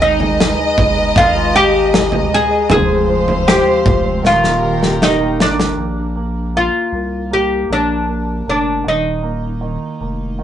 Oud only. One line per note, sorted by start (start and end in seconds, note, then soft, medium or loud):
0.02 1.17 D#4 medium
1.18 1.55 F4 loud
1.56 2.34 G4 loud
2.34 2.69 G#4 loud
2.71 3.47 G#4 loud
3.48 4.26 G4 medium
4.26 5.04 F4 medium
5.03 5.56 D#4 medium
5.42 6.52 D4 medium
6.57 7.33 F4 medium
7.33 7.72 G4 medium
7.73 8.48 D4 medium
8.50 8.88 D4 medium
8.88 10.44 D#4 medium